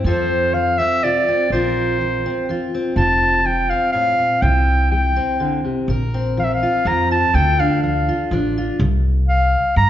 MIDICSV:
0, 0, Header, 1, 4, 480
1, 0, Start_track
1, 0, Key_signature, -1, "major"
1, 0, Tempo, 486224
1, 46, Time_signature, 3, 2, 24, 8
1, 9771, End_track
2, 0, Start_track
2, 0, Title_t, "Clarinet"
2, 0, Program_c, 0, 71
2, 55, Note_on_c, 0, 72, 65
2, 531, Note_on_c, 0, 77, 78
2, 546, Note_off_c, 0, 72, 0
2, 770, Note_on_c, 0, 76, 78
2, 785, Note_off_c, 0, 77, 0
2, 1023, Note_on_c, 0, 74, 74
2, 1038, Note_off_c, 0, 76, 0
2, 1494, Note_off_c, 0, 74, 0
2, 1499, Note_on_c, 0, 72, 66
2, 2656, Note_off_c, 0, 72, 0
2, 2926, Note_on_c, 0, 81, 77
2, 3414, Note_on_c, 0, 79, 67
2, 3428, Note_off_c, 0, 81, 0
2, 3648, Note_on_c, 0, 77, 72
2, 3663, Note_off_c, 0, 79, 0
2, 3865, Note_off_c, 0, 77, 0
2, 3871, Note_on_c, 0, 77, 75
2, 4359, Note_on_c, 0, 79, 74
2, 4374, Note_off_c, 0, 77, 0
2, 4845, Note_off_c, 0, 79, 0
2, 4850, Note_on_c, 0, 79, 66
2, 5531, Note_off_c, 0, 79, 0
2, 6308, Note_on_c, 0, 77, 63
2, 6355, Note_on_c, 0, 76, 52
2, 6370, Note_off_c, 0, 77, 0
2, 6455, Note_on_c, 0, 77, 69
2, 6470, Note_off_c, 0, 76, 0
2, 6787, Note_on_c, 0, 82, 75
2, 6801, Note_off_c, 0, 77, 0
2, 7016, Note_off_c, 0, 82, 0
2, 7022, Note_on_c, 0, 81, 73
2, 7254, Note_on_c, 0, 79, 83
2, 7269, Note_off_c, 0, 81, 0
2, 7498, Note_on_c, 0, 77, 70
2, 7513, Note_off_c, 0, 79, 0
2, 7721, Note_off_c, 0, 77, 0
2, 7727, Note_on_c, 0, 77, 55
2, 8175, Note_off_c, 0, 77, 0
2, 9164, Note_on_c, 0, 77, 72
2, 9611, Note_off_c, 0, 77, 0
2, 9645, Note_on_c, 0, 82, 86
2, 9771, Note_off_c, 0, 82, 0
2, 9771, End_track
3, 0, Start_track
3, 0, Title_t, "Steel-string acoustic guitar"
3, 0, Program_c, 1, 25
3, 50, Note_on_c, 1, 41, 62
3, 59, Note_on_c, 1, 53, 51
3, 63, Note_on_c, 1, 60, 44
3, 69, Note_on_c, 1, 65, 49
3, 77, Note_on_c, 1, 69, 54
3, 481, Note_off_c, 1, 41, 0
3, 531, Note_off_c, 1, 53, 0
3, 535, Note_on_c, 1, 53, 51
3, 782, Note_off_c, 1, 60, 0
3, 786, Note_on_c, 1, 60, 51
3, 964, Note_off_c, 1, 53, 0
3, 1024, Note_on_c, 1, 48, 54
3, 1025, Note_off_c, 1, 65, 0
3, 1029, Note_on_c, 1, 65, 47
3, 1263, Note_off_c, 1, 60, 0
3, 1267, Note_on_c, 1, 60, 44
3, 1448, Note_off_c, 1, 48, 0
3, 1475, Note_off_c, 1, 69, 0
3, 1503, Note_on_c, 1, 46, 61
3, 1511, Note_on_c, 1, 53, 44
3, 1512, Note_off_c, 1, 60, 0
3, 1516, Note_off_c, 1, 65, 0
3, 1516, Note_on_c, 1, 60, 51
3, 1520, Note_on_c, 1, 65, 49
3, 1531, Note_on_c, 1, 70, 53
3, 1929, Note_off_c, 1, 46, 0
3, 1980, Note_off_c, 1, 53, 0
3, 1984, Note_on_c, 1, 53, 55
3, 2224, Note_off_c, 1, 60, 0
3, 2228, Note_on_c, 1, 60, 49
3, 2409, Note_off_c, 1, 53, 0
3, 2457, Note_off_c, 1, 65, 0
3, 2458, Note_on_c, 1, 53, 55
3, 2469, Note_on_c, 1, 65, 52
3, 2706, Note_off_c, 1, 60, 0
3, 2709, Note_on_c, 1, 60, 41
3, 2886, Note_off_c, 1, 53, 0
3, 2911, Note_off_c, 1, 65, 0
3, 2922, Note_off_c, 1, 70, 0
3, 2931, Note_on_c, 1, 41, 63
3, 2939, Note_on_c, 1, 65, 51
3, 3363, Note_off_c, 1, 41, 0
3, 3409, Note_on_c, 1, 53, 54
3, 3652, Note_off_c, 1, 60, 0
3, 3656, Note_on_c, 1, 60, 48
3, 3842, Note_off_c, 1, 53, 0
3, 3891, Note_on_c, 1, 45, 53
3, 4126, Note_off_c, 1, 45, 0
3, 4129, Note_on_c, 1, 46, 50
3, 4347, Note_off_c, 1, 65, 0
3, 4368, Note_on_c, 1, 48, 59
3, 4370, Note_off_c, 1, 46, 0
3, 4375, Note_on_c, 1, 64, 49
3, 4802, Note_off_c, 1, 48, 0
3, 4851, Note_on_c, 1, 55, 51
3, 5093, Note_off_c, 1, 60, 0
3, 5097, Note_on_c, 1, 60, 49
3, 5283, Note_off_c, 1, 55, 0
3, 5330, Note_on_c, 1, 50, 52
3, 5569, Note_off_c, 1, 50, 0
3, 5573, Note_on_c, 1, 48, 46
3, 5785, Note_off_c, 1, 60, 0
3, 5785, Note_off_c, 1, 64, 0
3, 5812, Note_off_c, 1, 48, 0
3, 5815, Note_on_c, 1, 46, 58
3, 5822, Note_on_c, 1, 70, 58
3, 6063, Note_on_c, 1, 60, 51
3, 6245, Note_off_c, 1, 46, 0
3, 6292, Note_on_c, 1, 53, 53
3, 6541, Note_on_c, 1, 65, 52
3, 6724, Note_off_c, 1, 53, 0
3, 6766, Note_off_c, 1, 60, 0
3, 6767, Note_on_c, 1, 53, 55
3, 6778, Note_on_c, 1, 60, 48
3, 7016, Note_off_c, 1, 65, 0
3, 7020, Note_on_c, 1, 65, 52
3, 7201, Note_off_c, 1, 53, 0
3, 7226, Note_off_c, 1, 60, 0
3, 7227, Note_off_c, 1, 70, 0
3, 7251, Note_on_c, 1, 50, 60
3, 7257, Note_on_c, 1, 69, 63
3, 7498, Note_on_c, 1, 62, 56
3, 7683, Note_off_c, 1, 50, 0
3, 7734, Note_on_c, 1, 53, 53
3, 7979, Note_off_c, 1, 65, 0
3, 7983, Note_on_c, 1, 65, 52
3, 8163, Note_off_c, 1, 53, 0
3, 8209, Note_off_c, 1, 62, 0
3, 8215, Note_on_c, 1, 53, 57
3, 8223, Note_on_c, 1, 62, 52
3, 8456, Note_off_c, 1, 65, 0
3, 8466, Note_on_c, 1, 65, 51
3, 8645, Note_off_c, 1, 53, 0
3, 8663, Note_off_c, 1, 69, 0
3, 8666, Note_off_c, 1, 62, 0
3, 8668, Note_off_c, 1, 65, 0
3, 9771, End_track
4, 0, Start_track
4, 0, Title_t, "Upright bass"
4, 0, Program_c, 2, 32
4, 42, Note_on_c, 2, 41, 71
4, 782, Note_off_c, 2, 41, 0
4, 1483, Note_on_c, 2, 34, 65
4, 2223, Note_off_c, 2, 34, 0
4, 2921, Note_on_c, 2, 29, 72
4, 3663, Note_off_c, 2, 29, 0
4, 4365, Note_on_c, 2, 36, 80
4, 5105, Note_off_c, 2, 36, 0
4, 5803, Note_on_c, 2, 34, 74
4, 6543, Note_off_c, 2, 34, 0
4, 6764, Note_on_c, 2, 41, 75
4, 7135, Note_off_c, 2, 41, 0
4, 7243, Note_on_c, 2, 38, 82
4, 7983, Note_off_c, 2, 38, 0
4, 8205, Note_on_c, 2, 33, 76
4, 8575, Note_off_c, 2, 33, 0
4, 8682, Note_on_c, 2, 36, 88
4, 9420, Note_off_c, 2, 36, 0
4, 9637, Note_on_c, 2, 43, 86
4, 9771, Note_off_c, 2, 43, 0
4, 9771, End_track
0, 0, End_of_file